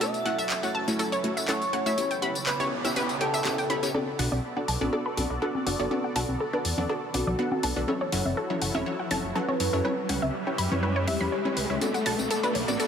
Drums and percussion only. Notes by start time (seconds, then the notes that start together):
0.01 closed hi-hat, tambourine
0.14 closed hi-hat, tambourine
0.26 closed hi-hat
0.39 closed hi-hat, tambourine
0.50 clap, closed hi-hat, tambourine
0.63 closed hi-hat, tambourine
0.88 closed hi-hat, tambourine
0.99 closed hi-hat, tambourine
1.12 closed hi-hat, tambourine
1.24 closed hi-hat
1.37 closed hi-hat, tambourine
1.48 clap, closed hi-hat, tambourine
1.62 closed hi-hat, tambourine
1.73 closed hi-hat
1.86 closed hi-hat, tambourine
1.98 closed hi-hat, tambourine
2.11 closed hi-hat, tambourine
2.22 closed hi-hat
2.35 closed hi-hat, tambourine
2.47 clap, closed hi-hat, tambourine
2.60 closed hi-hat, tambourine
2.85 closed hi-hat, tambourine
2.96 closed hi-hat, tambourine
3.09 closed hi-hat, tambourine
3.21 closed hi-hat
3.34 closed hi-hat, tambourine
3.45 clap, closed hi-hat, tambourine
3.58 closed hi-hat, tambourine
3.70 closed hi-hat
3.83 closed hi-hat, tambourine
3.94 high conga
4.19 open hi-hat
4.32 high conga
4.68 open hi-hat
4.81 high conga
5.17 open hi-hat, high conga
5.55 high conga
5.67 open hi-hat
5.91 high conga
6.16 open hi-hat
6.29 high conga
6.65 open hi-hat
6.78 high conga, low conga
7.14 open hi-hat, high conga
7.27 low conga
7.51 high conga
7.63 open hi-hat
7.88 high conga
8.12 open hi-hat
8.25 high conga
8.62 open hi-hat
8.75 high conga
9.11 open hi-hat, high conga
9.48 high conga
9.60 open hi-hat
9.85 high conga
10.09 open hi-hat
10.22 high conga
10.58 open hi-hat
10.71 high conga, low conga
11.07 open hi-hat, high conga
11.21 low conga
11.45 high conga
11.57 open hi-hat
11.81 closed hi-hat, tambourine, high conga
11.94 closed hi-hat, tambourine
12.06 open hi-hat, high bongo
12.19 closed hi-hat, tambourine, high conga
12.31 closed hi-hat, tambourine
12.43 closed hi-hat, tambourine
12.55 open hi-hat, high bongo
12.68 closed hi-hat, tambourine, high conga
12.80 closed hi-hat, tambourine